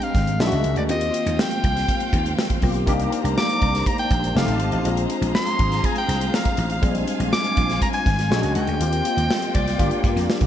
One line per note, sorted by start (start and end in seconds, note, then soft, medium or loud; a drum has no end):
0.00 0.85 D3 medium
0.00 0.36 G#3 medium
0.00 0.37 C4 medium
0.00 0.37 D4 medium
0.00 0.37 G4 medium
0.00 0.36 C5 medium
0.00 0.42 F5 loud
0.00 0.38 G5 medium
0.00 closed hi-hat medium
0.15 0.40 G#1 medium
0.15 kick medium
0.15 snare soft
0.15 closed hi-hat medium
0.27 closed hi-hat medium
0.27 high conga medium
0.40 0.50 A#1 loud
0.40 0.89 G#3 medium
0.40 0.89 C#4 medium
0.40 0.90 D4 medium
0.40 0.46 E4 medium
0.40 0.89 A#4 medium
0.40 0.77 E5 medium
0.40 0.89 F#5 medium
0.40 snare loud
0.40 muted conga soft
0.47 0.93 F#4 medium
0.52 0.62 C#2 medium
0.52 closed hi-hat medium
0.52 high conga soft
0.64 0.74 C#2 medium
0.64 closed hi-hat medium
0.64 muted conga soft
0.64 low conga medium
0.76 0.89 D2 medium
0.76 0.83 D5 medium
0.76 closed hi-hat soft
0.88 1.09 D#2 loud
0.88 4.32 D#3 medium
0.88 2.58 A#3 medium
0.88 2.59 C4 medium
0.88 2.59 F4 medium
0.88 2.60 G4 medium
0.88 8.27 C5 medium
0.88 1.42 D#5 loud
0.88 2.85 F5 medium
0.88 2.85 G5 loud
0.88 closed hi-hat medium
0.88 muted conga soft
0.88 low conga medium
1.01 closed hi-hat medium
1.14 closed hi-hat medium
1.26 1.36 D#2 medium
1.26 closed hi-hat medium
1.26 high conga medium
1.39 2.63 G5 loud
1.39 snare loud
1.39 muted conga soft
1.39 high conga medium
1.51 closed hi-hat medium
1.51 high conga medium
1.64 1.84 C2 loud
1.64 kick medium
1.64 closed hi-hat medium
1.64 muted conga soft
1.64 low conga medium
1.77 snare soft
1.77 closed hi-hat medium
1.88 kick medium
1.88 closed hi-hat medium
1.88 muted conga soft
1.88 high conga medium
2.00 closed hi-hat medium
2.13 2.33 D#2 medium
2.13 kick medium
2.13 closed hi-hat medium
2.13 muted conga soft
2.25 closed hi-hat medium
2.25 high conga medium
2.39 snare loud
2.50 kick loud
2.50 closed hi-hat medium
2.50 high conga soft
2.62 2.87 B1 medium
2.62 2.85 A#3 medium
2.62 2.87 C4 medium
2.62 2.87 F4 medium
2.62 2.87 G4 medium
2.62 kick medium
2.62 open hi-hat medium
2.62 muted conga soft
2.62 low conga medium
2.74 closed hi-hat soft
2.86 3.07 C2 loud
2.86 4.32 A#3 medium
2.86 4.32 D4 medium
2.86 4.33 D#4 medium
2.86 4.33 G4 medium
2.86 4.34 D5 medium
2.86 4.34 A#5 medium
2.86 kick loud
2.86 closed hi-hat medium
2.86 muted conga soft
2.86 low conga medium
3.00 closed hi-hat medium
3.12 closed hi-hat medium
3.12 muted conga soft
3.24 3.34 C2 loud
3.24 closed hi-hat medium
3.24 high conga medium
3.37 3.88 D6 loud
3.37 snare loud
3.37 high conga medium
3.49 closed hi-hat medium
3.49 high conga medium
3.61 3.82 C2 medium
3.61 kick medium
3.61 closed hi-hat medium
3.61 muted conga soft
3.61 low conga medium
3.75 snare soft
3.75 closed hi-hat medium
3.86 3.98 A#5 medium
3.86 kick medium
3.86 closed hi-hat medium
3.86 muted conga soft
3.86 high conga medium
3.98 4.33 G5 loud
3.98 closed hi-hat medium
4.11 4.31 A#1 medium
4.11 kick loud
4.11 closed hi-hat medium
4.23 closed hi-hat medium
4.23 high conga medium
4.35 4.45 F1 loud
4.35 4.85 A3 medium
4.35 4.84 C4 medium
4.35 4.85 D#4 medium
4.35 4.84 F4 medium
4.35 4.85 G4 medium
4.35 4.84 D#5 medium
4.35 4.71 F5 medium
4.35 4.84 A5 medium
4.35 snare loud
4.48 4.60 A1 medium
4.48 closed hi-hat medium
4.48 high conga soft
4.60 4.70 G#1 medium
4.60 closed hi-hat medium
4.60 muted conga soft
4.60 low conga medium
4.72 4.82 A1 medium
4.72 4.96 F5 medium
4.72 closed hi-hat soft
4.84 5.05 A#1 loud
4.84 6.78 G#3 medium
4.84 6.79 C4 medium
4.84 6.79 D4 medium
4.84 6.79 F4 medium
4.84 6.80 G#4 medium
4.84 8.76 F5 medium
4.84 6.81 A#5 medium
4.84 closed hi-hat medium
4.84 muted conga soft
4.84 low conga medium
4.97 closed hi-hat medium
5.09 closed hi-hat medium
5.09 muted conga soft
5.21 5.32 A#1 medium
5.21 closed hi-hat medium
5.21 high conga medium
5.35 5.87 C6 loud
5.35 snare loud
5.35 muted conga soft
5.35 high conga medium
5.47 closed hi-hat medium
5.47 high conga medium
5.59 5.79 G#1 medium
5.59 kick medium
5.59 closed hi-hat medium
5.59 muted conga soft
5.59 low conga medium
5.72 snare soft
5.72 closed hi-hat soft
5.84 5.97 G#5 medium
5.84 kick medium
5.84 closed hi-hat medium
5.84 high conga medium
5.96 6.36 G5 loud
5.96 closed hi-hat medium
6.08 6.28 C2 medium
6.08 snare soft
6.08 closed hi-hat medium
6.08 muted conga soft
6.21 closed hi-hat medium
6.21 high conga medium
6.34 6.71 F5 medium
6.34 snare loud
6.45 kick loud
6.45 closed hi-hat medium
6.45 high conga medium
6.57 6.78 A1 loud
6.57 closed hi-hat medium
6.57 muted conga soft
6.57 low conga medium
6.70 6.94 F5 medium
6.70 closed hi-hat soft
6.82 7.03 A#1 loud
6.82 8.29 G3 medium
6.82 8.27 G#3 medium
6.82 8.28 C4 medium
6.82 8.28 D4 medium
6.82 8.29 F4 medium
6.82 8.78 G#5 medium
6.82 kick loud
6.82 closed hi-hat medium
6.82 muted conga soft
6.82 low conga medium
6.95 closed hi-hat medium
7.07 closed hi-hat medium
7.07 muted conga soft
7.20 7.30 A#1 loud
7.20 closed hi-hat medium
7.20 high conga medium
7.33 7.78 D6 loud
7.33 snare loud
7.33 muted conga soft
7.33 high conga medium
7.44 closed hi-hat medium
7.44 high conga medium
7.57 7.77 A#1 medium
7.57 kick medium
7.57 closed hi-hat medium
7.57 muted conga soft
7.57 low conga medium
7.70 snare soft
7.70 closed hi-hat soft
7.82 7.88 A#5 loud
7.82 kick medium
7.82 closed hi-hat medium
7.82 high conga medium
7.93 8.52 G#5 loud
7.93 closed hi-hat medium
8.06 8.31 G#1 medium
8.06 kick loud
8.06 snare soft
8.06 closed hi-hat medium
8.19 snare soft
8.19 closed hi-hat medium
8.19 high conga medium
8.30 8.41 A#1 loud
8.30 8.80 G#3 medium
8.30 8.80 C#4 medium
8.30 8.80 D4 medium
8.30 8.80 F#4 medium
8.30 8.81 F#4 medium
8.30 8.80 A#4 medium
8.30 snare loud
8.43 8.53 C#2 medium
8.43 closed hi-hat medium
8.43 high conga soft
8.55 8.66 C#2 medium
8.55 9.50 G5 loud
8.55 closed hi-hat medium
8.55 muted conga soft
8.55 low conga medium
8.67 8.78 D2 medium
8.67 closed hi-hat soft
8.80 9.00 D#2 medium
8.80 9.77 A#3 medium
8.80 9.77 C4 medium
8.80 10.47 F4 medium
8.80 9.78 F4 medium
8.80 9.78 G4 medium
8.80 9.78 C5 medium
8.80 9.78 D#5 medium
8.80 10.47 G5 loud
8.80 closed hi-hat medium
8.80 low conga medium
8.93 closed hi-hat medium
9.05 closed hi-hat medium
9.05 muted conga soft
9.17 9.27 D#2 loud
9.17 closed hi-hat medium
9.17 high conga medium
9.30 snare loud
9.30 muted conga soft
9.30 high conga medium
9.42 closed hi-hat medium
9.42 high conga medium
9.54 9.75 C2 medium
9.54 10.25 D5 medium
9.54 kick medium
9.54 closed hi-hat medium
9.54 low conga medium
9.68 snare soft
9.68 closed hi-hat medium
9.78 9.89 G1 loud
9.78 10.47 A#3 medium
9.78 10.47 D4 medium
9.78 10.47 F4 medium
9.78 10.47 G4 medium
9.78 10.47 A#4 medium
9.78 10.47 D5 medium
9.78 kick medium
9.78 closed hi-hat medium
9.78 high conga medium
9.91 closed hi-hat medium
10.04 10.14 G2 medium
10.04 kick loud
10.04 closed hi-hat medium
10.16 10.26 F2 medium
10.16 snare soft
10.16 closed hi-hat medium
10.16 high conga medium
10.30 snare loud
10.41 10.47 A#1 medium
10.41 kick medium
10.41 closed hi-hat medium